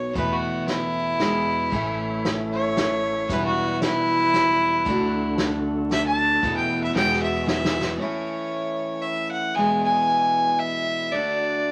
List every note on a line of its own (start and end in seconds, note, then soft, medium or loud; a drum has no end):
0.00 0.12 B1 medium
0.00 0.13 B2 medium
0.00 0.15 F#3 medium
0.00 0.16 B3 medium
0.00 0.16 D#4 medium
0.00 0.17 F#4 medium
0.00 0.12 C#5 loud
0.13 1.18 E2 medium
0.13 1.19 B2 medium
0.13 1.20 E3 medium
0.13 1.20 A3 medium
0.13 1.20 B3 medium
0.13 kick medium
0.13 closed hi-hat soft
0.18 1.21 E4 medium
0.18 0.33 B4 medium
0.32 0.67 F#4 medium
0.68 2.21 E4 loud
0.68 snare medium
0.68 closed hi-hat soft
1.19 1.72 E2 medium
1.19 1.71 E2 medium
1.19 1.69 B2 medium
1.19 1.71 E3 medium
1.19 1.73 G#3 medium
1.19 1.73 B3 medium
1.19 1.75 E4 medium
1.19 snare medium
1.19 closed hi-hat soft
1.70 3.26 A1 medium
1.70 3.28 A2 medium
1.70 3.29 E3 medium
1.70 3.27 A3 medium
1.70 3.29 A3 medium
1.70 3.27 A4 medium
1.70 3.27 C#5 medium
1.70 3.27 E5 medium
1.70 kick medium
1.70 closed hi-hat soft
1.74 3.30 C#4 medium
1.74 3.30 E4 medium
2.25 snare medium
2.25 closed hi-hat soft
2.52 3.34 C#5 loud
2.77 snare medium
2.77 closed hi-hat soft
3.28 4.83 E1 medium
3.28 4.85 E2 medium
3.28 4.86 B2 medium
3.28 4.84 E3 medium
3.28 4.85 E3 medium
3.28 4.84 G3 medium
3.28 4.86 G3 medium
3.28 4.84 E4 medium
3.28 4.84 B4 medium
3.28 kick medium
3.28 closed hi-hat medium
3.32 4.87 B3 medium
3.32 4.87 E4 medium
3.32 3.45 B4 medium
3.46 3.81 F#4 medium
3.82 5.35 E4 loud
3.82 snare medium
3.82 closed hi-hat medium
4.34 snare medium
4.34 closed hi-hat medium
4.85 6.39 D2 medium
4.85 6.42 D3 medium
4.85 6.41 D3 medium
4.85 6.43 A3 medium
4.85 6.41 D4 medium
4.85 6.44 D4 medium
4.85 6.41 F#4 medium
4.85 6.92 A4 medium
4.85 kick medium
4.85 closed hi-hat soft
4.90 6.44 F#4 medium
5.38 snare medium
5.38 closed hi-hat soft
5.91 6.05 E5 loud
5.91 snare medium
5.91 closed hi-hat soft
6.07 6.56 A5 medium
6.41 6.92 E2 medium
6.41 6.94 E2 medium
6.41 6.94 B2 medium
6.41 7.97 E3 medium
6.41 6.94 E3 medium
6.41 6.95 A3 medium
6.41 6.95 B3 medium
6.41 6.93 E4 medium
6.41 6.96 E4 medium
6.41 6.94 B4 medium
6.41 kick medium
6.41 closed hi-hat soft
6.57 6.82 G5 medium
6.84 6.94 E5 medium
6.93 7.98 E2 medium
6.93 7.97 E2 medium
6.93 7.97 B2 medium
6.93 7.98 E3 medium
6.93 8.00 G#3 medium
6.93 7.98 E4 medium
6.93 7.98 F#4 medium
6.93 7.98 G#4 medium
6.93 7.22 G5 medium
6.93 snare medium
6.97 8.01 B3 medium
6.97 8.01 F#4 medium
7.13 snare medium
7.22 7.45 E5 medium
7.47 7.96 E5 medium
7.47 snare medium
7.65 snare medium
7.81 snare medium
7.98 9.55 A2 medium
7.98 9.56 E3 medium
7.98 9.57 A3 medium
7.98 9.57 C#4 medium
7.98 9.03 C#5 medium
8.02 9.57 E4 medium
9.02 9.31 E5 medium
9.31 9.56 F#5 medium
9.54 11.12 E2 medium
9.54 11.12 B2 medium
9.54 11.11 E3 medium
9.54 11.13 G#3 medium
9.54 11.14 B3 medium
9.54 9.84 G#5 medium
9.60 11.14 E4 medium
9.85 10.60 G#5 medium
10.59 11.14 E5 medium
11.12 11.72 D3 medium
11.12 11.72 A3 medium
11.12 11.72 D4 medium
11.12 11.72 D5 medium
11.16 11.72 F#4 medium